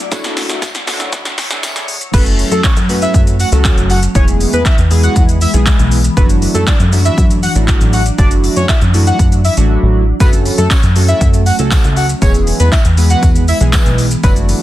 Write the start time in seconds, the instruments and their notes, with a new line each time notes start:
Already playing: ambient pad F#2 F#3 A3 E4
0.11 analog polysynth F#2 A3 D4 E4 F#4, ambient pad C#5, kick, snare, closed hi-hat, tambourine, shaker
0.24 snare, closed hi-hat, shaker
0.37 snare, open hi-hat, tambourine, shaker
0.50 snare, closed hi-hat, shaker
0.62 kick, snare, closed hi-hat, tambourine, shaker
0.75 snare, closed hi-hat, shaker
0.87 analog polysynth F#2 A3 D4 E4 F#4, snare, open hi-hat, tambourine, shaker
1.00 snare, closed hi-hat, shaker
1.13 kick, snare, closed hi-hat, tambourine, shaker
1.25 snare, closed hi-hat, shaker
1.38 snare, open hi-hat, tambourine, shaker
1.50 analog polysynth F#2 A3 D4 E4 G#4, snare, closed hi-hat, shaker
1.63 snare, closed hi-hat, tambourine, shaker
1.76 snare, closed hi-hat, shaker
1.88 open hi-hat, tambourine, shaker
2.01 closed hi-hat, shaker
2.13 analog synth bass F#1, ambient pad F#3 A3 C#4, analog polysynth F#3 A3 C#4 F#4 A4, analog synth lead B4, kick, closed hi-hat, crash, shaker
2.26 closed hi-hat, shaker
2.39 open hi-hat, shaker
2.51 analog synth bass F#2, analog synth lead A4, closed hi-hat, shaker
2.64 analog synth lead C#5, kick, clap, closed hi-hat, shaker
2.76 analog synth bass F#2, closed hi-hat, shaker
2.89 analog polysynth F#3 A3 C#4 F#4 B4, open hi-hat, shaker
3.02 analog synth lead E5, closed hi-hat, shaker
3.14 analog synth bass F#2, kick, closed hi-hat, shaker
3.27 closed hi-hat, shaker
3.40 analog synth lead F#5, open hi-hat, shaker
3.52 analog synth bass C#2, analog polysynth F#3 A3 C#4 F#4 A4, closed hi-hat, shaker
3.65 kick, clap, closed hi-hat, shaker
3.77 analog synth bass F#1, closed hi-hat, shaker
3.90 analog synth lead F#5, open hi-hat, shaker
4.03 closed hi-hat, shaker
4.15 analog synth bass E1, analog polysynth E3 G#3 B3 E4 G#4, ambient pad E3 G#3 B3, analog synth lead C#5, kick, closed hi-hat, shaker
4.28 closed hi-hat, shaker
4.40 open hi-hat, shaker
4.53 analog synth bass E2, analog synth lead B4, closed hi-hat, shaker
4.65 analog synth lead E5, kick, clap, closed hi-hat, shaker
4.78 analog synth bass E2, closed hi-hat, shaker
4.91 analog polysynth E3 G#3 B3 E4 G#4, open hi-hat, shaker
5.03 analog synth lead F#5, closed hi-hat, shaker
5.16 analog synth bass E2, kick, closed hi-hat, shaker
5.29 closed hi-hat, shaker
5.41 analog synth lead E5, open hi-hat, shaker
5.53 analog synth bass B1, analog polysynth E3 G#3 B3 E4 G#4, closed hi-hat, shaker
5.66 kick, clap, closed hi-hat, shaker
5.79 analog synth bass B1, closed hi-hat, shaker
5.91 open hi-hat, shaker
6.04 closed hi-hat, shaker
6.17 analog synth bass F#1, analog polysynth F#3 A3 D4 E4 F#4, ambient pad F#3 D4, analog synth lead B4, kick, closed hi-hat, shaker
6.29 closed hi-hat, shaker
6.42 open hi-hat, shaker
6.54 analog synth bass F#2, analog synth lead A4, closed hi-hat, shaker
6.67 analog synth lead D5, kick, clap, closed hi-hat, shaker
6.80 analog synth bass F#2, closed hi-hat, shaker
6.92 analog polysynth F#3 A3 D4 E4 F#4, open hi-hat, shaker
7.05 analog synth lead E5, closed hi-hat, shaker
7.18 analog synth bass F#2, kick, closed hi-hat, shaker
7.30 closed hi-hat, shaker
7.43 analog synth lead F#5, open hi-hat, shaker
7.55 analog synth bass A1, analog polysynth F#3 A3 D4 E4 F#4, closed hi-hat, shaker
7.68 kick, clap, closed hi-hat, shaker
7.81 analog synth bass A1, closed hi-hat, shaker
7.93 analog synth lead F#5, open hi-hat, shaker
8.06 closed hi-hat, shaker
8.18 analog synth bass F#1, analog polysynth F#3 A3 D4 E4 F#4, analog synth lead D5, kick, closed hi-hat, shaker
8.31 closed hi-hat, shaker
8.44 open hi-hat, shaker
8.56 analog synth bass F#2, analog synth lead C#5, closed hi-hat, shaker
8.69 analog synth lead E5, kick, clap, closed hi-hat, shaker
8.81 analog synth bass F#2, closed hi-hat, shaker
8.94 analog polysynth F#3 A3 D4 E4 F#4, open hi-hat, shaker
9.07 analog synth lead F#5, closed hi-hat, shaker
9.19 analog synth bass F#2, kick, closed hi-hat, shaker
9.32 closed hi-hat, shaker
9.45 analog synth lead E5, open hi-hat, shaker
9.57 analog synth bass A1, analog polysynth F#3 A3 D4 E4 F#4, closed hi-hat, shaker
9.83 analog synth bass A1
10.20 analog synth bass F#1, analog polysynth F#3 A3 C#4 F#4 A4, ambient pad A3 C#4, analog synth lead B4, kick, closed hi-hat, tambourine, shaker
10.33 closed hi-hat, shaker
10.46 open hi-hat, tambourine, shaker
10.58 analog synth bass F#2, analog synth lead A4, closed hi-hat, shaker
10.70 analog synth lead C#5, kick, clap, closed hi-hat, tambourine, shaker
10.83 analog synth bass F#2, closed hi-hat, shaker
10.96 analog polysynth F#3 A3 C#4 F#4 A4, open hi-hat, tambourine, shaker
11.08 analog synth lead E5, closed hi-hat, shaker
11.21 analog synth bass F#2, kick, closed hi-hat, shaker
11.34 closed hi-hat, shaker
11.46 analog synth lead F#5, open hi-hat, tambourine, shaker
11.59 analog synth bass C#2, analog polysynth F#3 A3 C#4 F#4 A4, closed hi-hat, shaker
11.71 kick, clap, closed hi-hat, tambourine, shaker
11.84 analog synth bass C#2, closed hi-hat, shaker
11.96 analog synth lead F#5, open hi-hat, tambourine, shaker
12.09 closed hi-hat, shaker
12.22 analog synth bass E1, analog polysynth E3 G#3 B3 E4 G#4, ambient pad E3 G#3 B3, analog synth lead C#5, kick, closed hi-hat, tambourine, shaker
12.34 closed hi-hat, shaker
12.47 open hi-hat, tambourine, shaker
12.60 analog synth bass E2, analog synth lead B4, closed hi-hat, shaker
12.72 analog synth lead E5, kick, clap, closed hi-hat, tambourine, shaker
12.85 analog synth bass E2, closed hi-hat, shaker
12.97 analog polysynth E3 G#3 B3 E4 B4, open hi-hat, tambourine, shaker
13.10 analog synth lead F#5, closed hi-hat, shaker
13.23 analog synth bass E2, kick, closed hi-hat, tambourine, shaker
13.35 closed hi-hat, shaker
13.48 analog synth lead E5, open hi-hat, tambourine, shaker
13.60 analog synth bass B1, analog polysynth E3 G#3 B3 E4 G#4, closed hi-hat, shaker
13.73 kick, clap, closed hi-hat, tambourine, shaker
13.86 analog synth bass B1, closed hi-hat, shaker
13.98 open hi-hat, tambourine, shaker
14.11 closed hi-hat, shaker
14.23 analog synth bass F#1, analog polysynth F#3 A3 D4 E4 F#4, ambient pad F#3 D4, analog synth lead B4, kick, closed hi-hat, tambourine, shaker
14.36 closed hi-hat, shaker
14.49 open hi-hat, tambourine, shaker